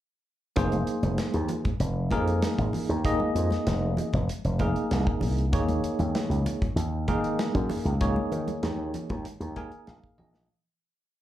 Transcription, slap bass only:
0, 0, Header, 1, 3, 480
1, 0, Start_track
1, 0, Key_signature, -4, "minor"
1, 0, Tempo, 620476
1, 444, Time_signature, 4, 2, 24, 8
1, 8673, End_track
2, 0, Start_track
2, 0, Title_t, "Slap bass"
2, 0, Program_c, 0, 36
2, 434, Note_on_c, 0, 29, 94
2, 665, Note_off_c, 0, 29, 0
2, 793, Note_on_c, 0, 29, 86
2, 910, Note_off_c, 0, 29, 0
2, 1035, Note_on_c, 0, 39, 77
2, 1151, Note_off_c, 0, 39, 0
2, 1390, Note_on_c, 0, 29, 85
2, 1622, Note_off_c, 0, 29, 0
2, 1635, Note_on_c, 0, 41, 96
2, 1864, Note_off_c, 0, 41, 0
2, 1998, Note_on_c, 0, 32, 78
2, 2111, Note_off_c, 0, 32, 0
2, 2236, Note_on_c, 0, 39, 91
2, 2466, Note_off_c, 0, 39, 0
2, 2592, Note_on_c, 0, 41, 84
2, 2711, Note_off_c, 0, 41, 0
2, 2836, Note_on_c, 0, 29, 73
2, 3064, Note_off_c, 0, 29, 0
2, 3200, Note_on_c, 0, 29, 80
2, 3311, Note_off_c, 0, 29, 0
2, 3438, Note_on_c, 0, 29, 83
2, 3666, Note_off_c, 0, 29, 0
2, 3799, Note_on_c, 0, 36, 69
2, 3914, Note_off_c, 0, 36, 0
2, 4036, Note_on_c, 0, 36, 75
2, 4279, Note_off_c, 0, 36, 0
2, 4279, Note_on_c, 0, 39, 102
2, 4506, Note_off_c, 0, 39, 0
2, 4636, Note_on_c, 0, 39, 89
2, 4750, Note_off_c, 0, 39, 0
2, 4870, Note_on_c, 0, 37, 79
2, 4986, Note_off_c, 0, 37, 0
2, 5228, Note_on_c, 0, 39, 86
2, 5461, Note_off_c, 0, 39, 0
2, 5476, Note_on_c, 0, 51, 89
2, 5706, Note_off_c, 0, 51, 0
2, 5836, Note_on_c, 0, 42, 77
2, 5951, Note_off_c, 0, 42, 0
2, 6074, Note_on_c, 0, 37, 94
2, 6306, Note_off_c, 0, 37, 0
2, 6433, Note_on_c, 0, 51, 71
2, 6553, Note_off_c, 0, 51, 0
2, 6677, Note_on_c, 0, 39, 79
2, 6907, Note_off_c, 0, 39, 0
2, 7040, Note_on_c, 0, 39, 80
2, 7154, Note_off_c, 0, 39, 0
2, 7273, Note_on_c, 0, 39, 78
2, 7507, Note_off_c, 0, 39, 0
2, 7639, Note_on_c, 0, 34, 78
2, 7758, Note_off_c, 0, 34, 0
2, 7882, Note_on_c, 0, 34, 78
2, 8111, Note_off_c, 0, 34, 0
2, 8673, End_track
3, 0, Start_track
3, 0, Title_t, "Muted slap bass strokes"
3, 673, Note_on_c, 9, 29, 35
3, 750, Note_off_c, 9, 29, 0
3, 1277, Note_on_c, 9, 29, 35
3, 1354, Note_off_c, 9, 29, 0
3, 2115, Note_on_c, 9, 29, 34
3, 2193, Note_off_c, 9, 29, 0
3, 3920, Note_on_c, 9, 29, 37
3, 3997, Note_off_c, 9, 29, 0
3, 4515, Note_on_c, 9, 29, 31
3, 4592, Note_off_c, 9, 29, 0
3, 5119, Note_on_c, 9, 29, 37
3, 5196, Note_off_c, 9, 29, 0
3, 5956, Note_on_c, 9, 29, 35
3, 6033, Note_off_c, 9, 29, 0
3, 8673, End_track
0, 0, End_of_file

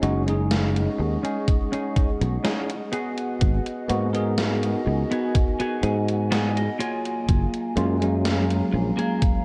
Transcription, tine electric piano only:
0, 0, Header, 1, 2, 480
1, 0, Start_track
1, 0, Tempo, 967742
1, 1694, Time_signature, 4, 2, 24, 8
1, 4686, End_track
2, 0, Start_track
2, 0, Title_t, "Tine electric piano"
2, 0, Program_c, 0, 4
2, 9, Note_on_c, 0, 56, 84
2, 10, Note_on_c, 0, 61, 77
2, 13, Note_on_c, 0, 63, 78
2, 16, Note_on_c, 0, 66, 97
2, 106, Note_off_c, 0, 56, 0
2, 107, Note_off_c, 0, 61, 0
2, 108, Note_off_c, 0, 63, 0
2, 109, Note_off_c, 0, 66, 0
2, 131, Note_on_c, 0, 56, 78
2, 135, Note_on_c, 0, 61, 70
2, 140, Note_on_c, 0, 63, 70
2, 146, Note_on_c, 0, 68, 83
2, 1436, Note_off_c, 0, 56, 0
2, 1438, Note_off_c, 0, 61, 0
2, 1441, Note_off_c, 0, 63, 0
2, 1444, Note_off_c, 0, 68, 0
2, 1926, Note_on_c, 0, 58, 86
2, 1929, Note_on_c, 0, 59, 81
2, 1933, Note_on_c, 0, 63, 76
2, 1935, Note_on_c, 0, 66, 95
2, 2025, Note_off_c, 0, 58, 0
2, 2026, Note_off_c, 0, 59, 0
2, 2028, Note_off_c, 0, 63, 0
2, 2029, Note_off_c, 0, 66, 0
2, 2049, Note_on_c, 0, 70, 73
2, 2053, Note_on_c, 0, 59, 70
2, 2057, Note_on_c, 0, 63, 72
2, 2063, Note_on_c, 0, 68, 84
2, 3355, Note_off_c, 0, 70, 0
2, 3357, Note_off_c, 0, 59, 0
2, 3359, Note_off_c, 0, 63, 0
2, 3362, Note_off_c, 0, 68, 0
2, 3848, Note_on_c, 0, 56, 85
2, 3851, Note_on_c, 0, 58, 80
2, 3855, Note_on_c, 0, 61, 80
2, 3856, Note_on_c, 0, 65, 96
2, 3945, Note_off_c, 0, 56, 0
2, 3947, Note_off_c, 0, 58, 0
2, 3949, Note_off_c, 0, 61, 0
2, 3949, Note_off_c, 0, 65, 0
2, 3968, Note_on_c, 0, 56, 77
2, 3973, Note_on_c, 0, 58, 71
2, 3979, Note_on_c, 0, 61, 73
2, 3984, Note_on_c, 0, 54, 88
2, 4686, Note_off_c, 0, 54, 0
2, 4686, Note_off_c, 0, 56, 0
2, 4686, Note_off_c, 0, 58, 0
2, 4686, Note_off_c, 0, 61, 0
2, 4686, End_track
0, 0, End_of_file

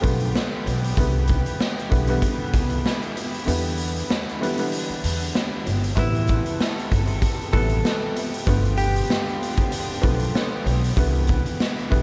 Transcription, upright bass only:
0, 0, Header, 1, 3, 480
1, 0, Start_track
1, 0, Key_signature, 0, "minor"
1, 0, Tempo, 625000
1, 747, Time_signature, 4, 2, 24, 8
1, 9234, End_track
2, 0, Start_track
2, 0, Title_t, "Upright bass"
2, 0, Program_c, 0, 32
2, 29, Note_on_c, 0, 35, 93
2, 232, Note_off_c, 0, 35, 0
2, 508, Note_on_c, 0, 35, 99
2, 712, Note_off_c, 0, 35, 0
2, 747, Note_on_c, 0, 36, 108
2, 1063, Note_off_c, 0, 36, 0
2, 1473, Note_on_c, 0, 35, 89
2, 1674, Note_off_c, 0, 35, 0
2, 1948, Note_on_c, 0, 36, 92
2, 2152, Note_off_c, 0, 36, 0
2, 2669, Note_on_c, 0, 40, 103
2, 3076, Note_off_c, 0, 40, 0
2, 3869, Note_on_c, 0, 40, 88
2, 4073, Note_off_c, 0, 40, 0
2, 4348, Note_on_c, 0, 31, 94
2, 4552, Note_off_c, 0, 31, 0
2, 4584, Note_on_c, 0, 33, 115
2, 4901, Note_off_c, 0, 33, 0
2, 5313, Note_on_c, 0, 31, 93
2, 5514, Note_off_c, 0, 31, 0
2, 5786, Note_on_c, 0, 33, 99
2, 5991, Note_off_c, 0, 33, 0
2, 6504, Note_on_c, 0, 31, 114
2, 6914, Note_off_c, 0, 31, 0
2, 7707, Note_on_c, 0, 35, 91
2, 7911, Note_off_c, 0, 35, 0
2, 8185, Note_on_c, 0, 35, 102
2, 8390, Note_off_c, 0, 35, 0
2, 8426, Note_on_c, 0, 36, 103
2, 8742, Note_off_c, 0, 36, 0
2, 9153, Note_on_c, 0, 35, 89
2, 9234, Note_off_c, 0, 35, 0
2, 9234, End_track
3, 0, Start_track
3, 0, Title_t, "Muted upright bass strokes"
3, 1841, Note_on_c, 9, 29, 46
3, 1918, Note_off_c, 9, 29, 0
3, 3761, Note_on_c, 9, 29, 47
3, 3838, Note_off_c, 9, 29, 0
3, 5681, Note_on_c, 9, 29, 49
3, 5758, Note_off_c, 9, 29, 0
3, 7598, Note_on_c, 9, 29, 51
3, 7675, Note_off_c, 9, 29, 0
3, 9234, End_track
0, 0, End_of_file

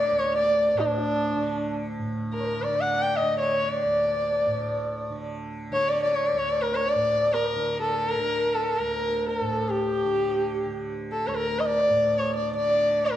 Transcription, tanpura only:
0, 0, Header, 1, 2, 480
1, 0, Start_track
1, 0, Tempo, 500000
1, 12638, End_track
2, 0, Start_track
2, 0, Title_t, "Tanpura"
2, 0, Program_c, 0, 104
2, 0, Note_on_c, 0, 38, 61
2, 0, Note_on_c, 0, 45, 57
2, 0, Note_on_c, 0, 50, 59
2, 106, Note_off_c, 0, 38, 0
2, 110, Note_on_c, 0, 38, 60
2, 710, Note_off_c, 0, 45, 0
2, 714, Note_on_c, 0, 45, 59
2, 1294, Note_off_c, 0, 50, 0
2, 1294, Note_on_c, 0, 50, 57
2, 1904, Note_off_c, 0, 45, 0
2, 1904, Note_on_c, 0, 45, 52
2, 2495, Note_off_c, 0, 50, 0
2, 2495, Note_on_c, 0, 50, 52
2, 3091, Note_off_c, 0, 50, 0
2, 3091, Note_on_c, 0, 50, 55
2, 3688, Note_off_c, 0, 38, 0
2, 3692, Note_on_c, 0, 38, 51
2, 4284, Note_off_c, 0, 45, 0
2, 4284, Note_on_c, 0, 45, 57
2, 4891, Note_off_c, 0, 50, 0
2, 4895, Note_on_c, 0, 50, 55
2, 5483, Note_off_c, 0, 50, 0
2, 5483, Note_on_c, 0, 50, 63
2, 6072, Note_off_c, 0, 38, 0
2, 6076, Note_on_c, 0, 38, 57
2, 6665, Note_off_c, 0, 45, 0
2, 6668, Note_on_c, 0, 45, 47
2, 7255, Note_off_c, 0, 50, 0
2, 7255, Note_on_c, 0, 50, 55
2, 7845, Note_off_c, 0, 50, 0
2, 7845, Note_on_c, 0, 50, 57
2, 8441, Note_off_c, 0, 38, 0
2, 8445, Note_on_c, 0, 38, 52
2, 9030, Note_off_c, 0, 45, 0
2, 9034, Note_on_c, 0, 45, 51
2, 9640, Note_off_c, 0, 50, 0
2, 9640, Note_on_c, 0, 50, 52
2, 10234, Note_off_c, 0, 50, 0
2, 10234, Note_on_c, 0, 50, 50
2, 10819, Note_off_c, 0, 38, 0
2, 10823, Note_on_c, 0, 38, 56
2, 11413, Note_off_c, 0, 45, 0
2, 11417, Note_on_c, 0, 45, 53
2, 12025, Note_off_c, 0, 50, 0
2, 12025, Note_on_c, 0, 50, 59
2, 12638, Note_off_c, 0, 38, 0
2, 12638, Note_off_c, 0, 45, 0
2, 12638, Note_off_c, 0, 50, 0
2, 12638, End_track
0, 0, End_of_file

